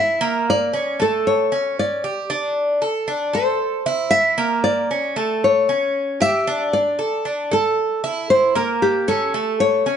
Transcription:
0.00 0.20 E4 medium
0.00 0.49 E5 loud
0.21 0.72 A#3 loud
0.50 1.02 D5 loud
0.73 0.99 C#4 medium
1.00 1.50 A3 medium
1.00 1.25 A4 medium
1.27 1.79 C#5 medium
1.52 2.02 C#4 medium
1.79 2.79 D5 medium
2.04 2.29 G4 medium
2.30 2.80 D4 medium
2.82 3.07 A4 medium
3.08 3.33 D4 medium
3.33 3.84 A4 medium
3.33 4.10 C5 medium
3.86 4.37 E4 medium
4.11 4.63 E5 loud
4.38 4.89 A#3 medium
4.64 5.13 D5 loud
4.91 5.16 C#4 medium
5.16 5.67 A3 medium
5.44 6.21 C#5 medium
5.69 6.19 C#4 medium
6.21 6.46 G4 medium
6.21 6.73 E5 loud
6.47 6.98 D4 medium
6.73 7.22 D5 medium
6.99 7.24 A4 medium
7.25 7.50 D4 medium
7.51 8.02 A4 medium
7.51 8.30 A4 medium
8.04 8.54 E4 medium
8.30 8.54 C5 loud
8.55 9.06 A#3 loud
8.55 8.83 A#4 medium
8.82 9.06 G4 medium
9.08 9.33 C#4 medium
9.08 9.60 A4 loud
9.34 9.85 A3 medium
9.60 9.97 C#5 loud
9.86 9.97 C#4 medium

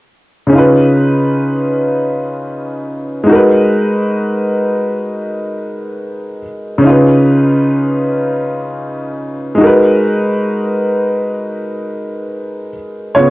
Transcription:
0.47 3.22 C#3 medium
0.47 3.23 C#4 medium
0.53 3.24 D#4 medium
0.53 3.26 F4 medium
0.58 3.27 B4 medium
3.24 6.38 G#3 medium
3.24 6.39 D#4 medium
3.29 6.41 F#4 medium
3.29 6.42 A#4 medium
3.35 6.43 B4 medium
6.78 9.53 C#3 medium
6.78 9.54 C#4 medium
6.84 9.56 D#4 medium
6.84 9.57 F4 medium
6.90 9.59 B4 medium
9.55 12.69 G#3 medium
9.55 12.70 D#4 medium
9.61 12.72 F#4 medium
9.61 12.73 A#4 medium
9.67 12.75 B4 medium
13.15 13.30 C#3 soft
13.15 13.30 B3 soft
13.15 13.30 F4 soft
13.15 13.30 C#5 medium

